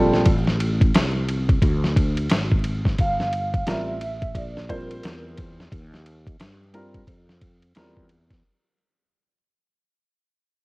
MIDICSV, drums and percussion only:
0, 0, Header, 1, 2, 480
1, 0, Start_track
1, 0, Tempo, 681818
1, 182, Time_signature, 4, 2, 24, 8
1, 7495, End_track
2, 0, Start_track
2, 0, Title_t, "Drums"
2, 96, Note_on_c, 9, 38, 35
2, 166, Note_off_c, 9, 38, 0
2, 180, Note_on_c, 9, 51, 69
2, 183, Note_on_c, 9, 36, 98
2, 251, Note_off_c, 9, 51, 0
2, 254, Note_off_c, 9, 36, 0
2, 334, Note_on_c, 9, 38, 34
2, 404, Note_off_c, 9, 38, 0
2, 424, Note_on_c, 9, 51, 58
2, 494, Note_off_c, 9, 51, 0
2, 572, Note_on_c, 9, 36, 112
2, 574, Note_on_c, 9, 51, 42
2, 642, Note_off_c, 9, 36, 0
2, 645, Note_off_c, 9, 51, 0
2, 665, Note_on_c, 9, 44, 53
2, 665, Note_on_c, 9, 51, 71
2, 673, Note_on_c, 9, 38, 109
2, 735, Note_off_c, 9, 44, 0
2, 735, Note_off_c, 9, 51, 0
2, 743, Note_off_c, 9, 38, 0
2, 905, Note_on_c, 9, 51, 52
2, 976, Note_off_c, 9, 51, 0
2, 1049, Note_on_c, 9, 36, 104
2, 1050, Note_on_c, 9, 51, 37
2, 1120, Note_off_c, 9, 36, 0
2, 1120, Note_off_c, 9, 51, 0
2, 1140, Note_on_c, 9, 36, 91
2, 1143, Note_on_c, 9, 51, 60
2, 1210, Note_off_c, 9, 36, 0
2, 1213, Note_off_c, 9, 51, 0
2, 1296, Note_on_c, 9, 38, 33
2, 1366, Note_off_c, 9, 38, 0
2, 1383, Note_on_c, 9, 36, 86
2, 1386, Note_on_c, 9, 51, 60
2, 1453, Note_off_c, 9, 36, 0
2, 1456, Note_off_c, 9, 51, 0
2, 1528, Note_on_c, 9, 51, 43
2, 1599, Note_off_c, 9, 51, 0
2, 1616, Note_on_c, 9, 44, 53
2, 1616, Note_on_c, 9, 51, 69
2, 1629, Note_on_c, 9, 38, 105
2, 1686, Note_off_c, 9, 44, 0
2, 1686, Note_off_c, 9, 51, 0
2, 1700, Note_off_c, 9, 38, 0
2, 1771, Note_on_c, 9, 36, 97
2, 1841, Note_off_c, 9, 36, 0
2, 1858, Note_on_c, 9, 51, 63
2, 1929, Note_off_c, 9, 51, 0
2, 2009, Note_on_c, 9, 36, 96
2, 2017, Note_on_c, 9, 38, 39
2, 2079, Note_off_c, 9, 36, 0
2, 2088, Note_off_c, 9, 38, 0
2, 2102, Note_on_c, 9, 51, 71
2, 2104, Note_on_c, 9, 36, 107
2, 2172, Note_off_c, 9, 51, 0
2, 2174, Note_off_c, 9, 36, 0
2, 2254, Note_on_c, 9, 38, 36
2, 2324, Note_off_c, 9, 38, 0
2, 2343, Note_on_c, 9, 51, 55
2, 2413, Note_off_c, 9, 51, 0
2, 2491, Note_on_c, 9, 36, 111
2, 2492, Note_on_c, 9, 51, 42
2, 2562, Note_off_c, 9, 36, 0
2, 2563, Note_off_c, 9, 51, 0
2, 2582, Note_on_c, 9, 44, 51
2, 2582, Note_on_c, 9, 51, 71
2, 2590, Note_on_c, 9, 38, 94
2, 2652, Note_off_c, 9, 44, 0
2, 2652, Note_off_c, 9, 51, 0
2, 2660, Note_off_c, 9, 38, 0
2, 2823, Note_on_c, 9, 51, 60
2, 2894, Note_off_c, 9, 51, 0
2, 2970, Note_on_c, 9, 36, 98
2, 2970, Note_on_c, 9, 51, 39
2, 3040, Note_off_c, 9, 36, 0
2, 3041, Note_off_c, 9, 51, 0
2, 3061, Note_on_c, 9, 36, 86
2, 3063, Note_on_c, 9, 51, 64
2, 3131, Note_off_c, 9, 36, 0
2, 3133, Note_off_c, 9, 51, 0
2, 3217, Note_on_c, 9, 38, 32
2, 3287, Note_off_c, 9, 38, 0
2, 3304, Note_on_c, 9, 36, 78
2, 3306, Note_on_c, 9, 51, 66
2, 3374, Note_off_c, 9, 36, 0
2, 3376, Note_off_c, 9, 51, 0
2, 3455, Note_on_c, 9, 51, 45
2, 3525, Note_off_c, 9, 51, 0
2, 3544, Note_on_c, 9, 44, 55
2, 3544, Note_on_c, 9, 51, 70
2, 3557, Note_on_c, 9, 38, 110
2, 3614, Note_off_c, 9, 44, 0
2, 3614, Note_off_c, 9, 51, 0
2, 3628, Note_off_c, 9, 38, 0
2, 3784, Note_on_c, 9, 51, 64
2, 3790, Note_on_c, 9, 36, 78
2, 3854, Note_off_c, 9, 51, 0
2, 3860, Note_off_c, 9, 36, 0
2, 3943, Note_on_c, 9, 38, 38
2, 4013, Note_off_c, 9, 38, 0
2, 4026, Note_on_c, 9, 36, 110
2, 4028, Note_on_c, 9, 51, 68
2, 4096, Note_off_c, 9, 36, 0
2, 4099, Note_off_c, 9, 51, 0
2, 4180, Note_on_c, 9, 38, 34
2, 4251, Note_off_c, 9, 38, 0
2, 4266, Note_on_c, 9, 51, 55
2, 4337, Note_off_c, 9, 51, 0
2, 4412, Note_on_c, 9, 36, 119
2, 4416, Note_on_c, 9, 51, 46
2, 4482, Note_off_c, 9, 36, 0
2, 4487, Note_off_c, 9, 51, 0
2, 4504, Note_on_c, 9, 44, 52
2, 4504, Note_on_c, 9, 51, 72
2, 4511, Note_on_c, 9, 38, 103
2, 4574, Note_off_c, 9, 44, 0
2, 4574, Note_off_c, 9, 51, 0
2, 4582, Note_off_c, 9, 38, 0
2, 4745, Note_on_c, 9, 51, 57
2, 4815, Note_off_c, 9, 51, 0
2, 4889, Note_on_c, 9, 36, 89
2, 4889, Note_on_c, 9, 51, 42
2, 4959, Note_off_c, 9, 36, 0
2, 4959, Note_off_c, 9, 51, 0
2, 4979, Note_on_c, 9, 36, 84
2, 4982, Note_on_c, 9, 51, 65
2, 5050, Note_off_c, 9, 36, 0
2, 5053, Note_off_c, 9, 51, 0
2, 5133, Note_on_c, 9, 38, 33
2, 5204, Note_off_c, 9, 38, 0
2, 5219, Note_on_c, 9, 51, 70
2, 5221, Note_on_c, 9, 36, 91
2, 5290, Note_off_c, 9, 51, 0
2, 5291, Note_off_c, 9, 36, 0
2, 5367, Note_on_c, 9, 51, 43
2, 5437, Note_off_c, 9, 51, 0
2, 5455, Note_on_c, 9, 44, 51
2, 5455, Note_on_c, 9, 51, 70
2, 5468, Note_on_c, 9, 38, 96
2, 5525, Note_off_c, 9, 44, 0
2, 5525, Note_off_c, 9, 51, 0
2, 5538, Note_off_c, 9, 38, 0
2, 5609, Note_on_c, 9, 36, 86
2, 5679, Note_off_c, 9, 36, 0
2, 5697, Note_on_c, 9, 51, 58
2, 5767, Note_off_c, 9, 51, 0
2, 5846, Note_on_c, 9, 36, 96
2, 5847, Note_on_c, 9, 51, 40
2, 5853, Note_on_c, 9, 38, 35
2, 5917, Note_off_c, 9, 36, 0
2, 5917, Note_off_c, 9, 51, 0
2, 5923, Note_off_c, 9, 38, 0
2, 7495, End_track
0, 0, End_of_file